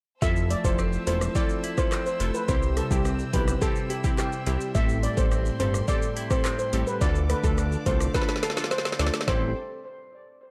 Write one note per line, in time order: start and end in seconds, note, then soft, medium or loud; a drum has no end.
0.22 0.55 F1 loud
0.22 2.49 F3 medium
0.22 0.61 E4 loud
0.22 0.61 F4 medium
0.22 0.61 A4 loud
0.22 4.71 C5 medium
0.22 2.46 E5 medium
0.22 0.35 E5 loud
0.22 2.46 A5 medium
0.22 4.71 E6 medium
0.22 kick loud
0.22 shaker medium
0.36 shaker medium
0.50 1.06 A3 medium
0.50 0.63 D5 medium
0.50 closed hi-hat medium
0.50 shaker medium
0.64 0.98 F1 loud
0.64 0.84 E4 medium
0.64 0.85 F4 medium
0.64 0.85 A4 medium
0.64 0.77 C5 medium
0.64 kick medium
0.64 shaker medium
0.79 1.35 C4 medium
0.79 cross-stick medium
0.79 shaker medium
0.93 shaker soft
1.07 1.29 E1 medium
1.07 2.19 A3 medium
1.07 1.27 E4 medium
1.07 1.27 F4 medium
1.07 1.27 A4 medium
1.07 1.20 C5 medium
1.07 closed hi-hat medium
1.07 shaker medium
1.21 cross-stick loud
1.21 shaker medium
1.35 1.92 C4 medium
1.35 1.74 E4 loud
1.35 1.74 F4 medium
1.35 1.75 A4 loud
1.35 1.48 D5 medium
1.35 kick medium
1.35 shaker medium
1.49 shaker medium
1.64 3.90 E4 medium
1.64 closed hi-hat medium
1.64 shaker medium
1.78 1.98 E4 medium
1.78 1.98 F4 medium
1.78 1.98 A4 medium
1.78 1.90 C5 medium
1.78 kick loud
1.78 cross-stick medium
1.78 shaker medium
1.92 3.05 C4 medium
1.92 cross-stick loud
1.92 clap loud
1.92 shaker medium
2.06 2.19 C5 medium
2.06 shaker medium
2.20 2.31 F1 loud
2.20 2.54 A3 medium
2.20 2.40 E4 medium
2.20 2.40 F4 medium
2.20 2.40 A4 medium
2.20 closed hi-hat medium
2.20 shaker medium
2.34 2.47 B4 medium
2.34 shaker medium
2.48 2.82 C2 loud
2.48 4.75 C3 medium
2.48 2.87 C4 loud
2.48 2.88 E4 medium
2.48 2.88 G4 loud
2.48 2.61 C5 medium
2.48 6.97 E5 medium
2.48 6.97 G5 medium
2.48 kick loud
2.48 shaker medium
2.63 shaker medium
2.77 3.33 G3 medium
2.77 2.89 A4 medium
2.77 cross-stick medium
2.77 closed hi-hat medium
2.77 shaker medium
2.91 3.24 C2 loud
2.91 3.11 C4 medium
2.91 3.11 E4 medium
2.91 3.03 G4 medium
2.91 3.11 G4 medium
2.91 kick medium
2.91 shaker medium
3.05 3.61 C4 medium
3.05 cross-stick medium
3.05 shaker medium
3.19 shaker medium
3.33 3.55 B1 medium
3.33 4.46 G3 medium
3.33 3.53 C4 medium
3.33 3.53 E4 medium
3.33 3.54 G4 medium
3.33 3.46 B4 medium
3.33 kick loud
3.33 closed hi-hat medium
3.33 shaker medium
3.48 cross-stick loud
3.48 shaker medium
3.61 4.01 C4 loud
3.61 4.18 C4 medium
3.61 4.01 E4 medium
3.61 4.01 G4 loud
3.61 3.74 A4 medium
3.61 kick medium
3.61 shaker medium
3.76 shaker medium
3.90 6.16 E4 medium
3.90 4.03 G4 medium
3.90 closed hi-hat medium
3.90 shaker medium
4.04 4.24 C4 medium
4.04 4.24 E4 medium
4.04 4.24 G4 medium
4.04 kick loud
4.04 shaker medium
4.18 5.31 C4 medium
4.18 4.58 G4 medium
4.18 cross-stick loud
4.18 clap loud
4.18 shaker medium
4.32 shaker medium
4.46 4.58 C2 medium
4.46 5.03 G3 medium
4.46 4.66 C4 medium
4.46 4.67 E4 medium
4.46 4.67 G4 medium
4.46 closed hi-hat medium
4.46 shaker medium
4.61 shaker medium
4.75 5.08 A1 loud
4.75 7.01 A2 medium
4.75 5.14 C4 loud
4.75 5.14 G4 medium
4.75 9.24 A4 medium
4.75 5.14 A4 loud
4.75 4.87 E5 medium
4.75 6.99 C6 medium
4.75 kick loud
4.75 shaker medium
4.89 shaker medium
5.03 5.59 G3 medium
5.03 5.16 D5 medium
5.03 closed hi-hat medium
5.03 shaker medium
5.17 5.50 A1 loud
5.17 5.37 C4 medium
5.17 5.37 G4 medium
5.17 5.38 A4 medium
5.17 5.30 C5 medium
5.17 kick loud
5.17 shaker medium
5.31 5.87 C4 medium
5.31 cross-stick medium
5.31 shaker medium
5.46 shaker soft
5.60 5.82 G1 medium
5.60 6.72 G3 medium
5.60 5.80 C4 medium
5.60 5.80 G4 medium
5.60 5.80 A4 medium
5.60 5.72 C5 medium
5.60 closed hi-hat medium
5.60 shaker medium
5.74 cross-stick medium
5.74 shaker loud
5.88 6.27 C4 loud
5.88 6.44 C4 medium
5.88 6.27 G4 medium
5.88 6.27 A4 loud
5.88 6.01 D5 medium
5.88 kick loud
5.88 shaker medium
6.02 shaker medium
6.17 7.07 E4 medium
6.17 closed hi-hat medium
6.17 shaker medium
6.30 6.50 C4 medium
6.30 6.51 G4 medium
6.30 6.51 A4 medium
6.30 6.43 C5 medium
6.30 kick loud
6.30 cross-stick medium
6.30 shaker medium
6.45 7.07 C4 medium
6.45 cross-stick loud
6.45 clap loud
6.45 shaker medium
6.59 6.71 C5 medium
6.59 shaker medium
6.73 6.84 A1 medium
6.73 7.07 G3 medium
6.73 6.93 C4 medium
6.73 6.93 G4 medium
6.73 6.93 A4 medium
6.73 closed hi-hat medium
6.73 shaker medium
6.87 7.00 B4 medium
6.87 shaker medium
7.01 7.34 D2 loud
7.01 9.27 D3 medium
7.01 7.40 D4 loud
7.01 7.40 F4 medium
7.01 7.41 A4 loud
7.01 7.14 D5 loud
7.01 9.26 D5 medium
7.01 9.26 F5 medium
7.01 9.26 D6 medium
7.01 kick loud
7.01 shaker medium
7.15 shaker medium
7.30 7.86 A3 medium
7.30 7.42 B4 medium
7.30 cross-stick medium
7.30 closed hi-hat medium
7.30 shaker medium
7.44 7.77 D2 loud
7.44 7.64 D4 medium
7.44 7.64 F4 medium
7.44 7.56 A4 medium
7.44 7.64 A4 medium
7.44 kick medium
7.44 shaker medium
7.58 8.13 D4 medium
7.58 cross-stick medium
7.58 shaker medium
7.72 shaker medium
7.86 8.08 C2 medium
7.86 8.99 A3 medium
7.86 8.06 D4 medium
7.86 8.06 F4 medium
7.86 8.06 A4 medium
7.86 7.99 C5 medium
7.86 kick loud
7.86 closed hi-hat medium
7.86 shaker medium
8.00 cross-stick loud
8.00 shaker medium
8.14 8.54 D4 loud
8.14 8.70 D4 medium
8.14 8.54 F4 medium
8.14 8.54 A4 loud
8.14 8.27 B4 medium
8.14 kick medium
8.14 snare medium
8.14 shaker medium
8.22 snare medium
8.29 snare medium
8.29 shaker medium
8.36 snare medium
8.43 9.29 F4 medium
8.43 8.55 A4 medium
8.43 snare medium
8.43 closed hi-hat medium
8.43 shaker medium
8.50 snare medium
8.57 8.77 D4 medium
8.57 8.77 F4 medium
8.57 8.77 A4 medium
8.57 snare medium
8.57 shaker medium
8.64 snare medium
8.71 9.29 D4 medium
8.71 8.84 C5 medium
8.71 snare medium
8.71 shaker medium
8.78 snare medium
8.85 snare loud
8.85 shaker medium
8.92 snare medium
8.99 9.11 D2 medium
8.99 9.28 A3 medium
8.99 9.19 D4 medium
8.99 9.19 F4 medium
8.99 9.20 A4 medium
8.99 9.12 D5 medium
8.99 snare loud
8.99 closed hi-hat medium
8.99 shaker medium
9.07 snare medium
9.14 snare loud
9.14 shaker medium
9.21 snare medium
9.27 9.54 A1 loud
9.27 9.50 A2 medium
9.27 9.50 E3 medium
9.27 9.51 G3 medium
9.27 9.49 C4 loud
9.27 9.51 C4 loud
9.27 9.54 E4 medium
9.27 9.51 E4 medium
9.27 9.49 G4 medium
9.27 9.54 A4 medium
9.27 9.49 A4 loud
9.27 9.54 C5 medium
9.27 9.54 G5 medium
9.27 kick loud
9.27 snare loud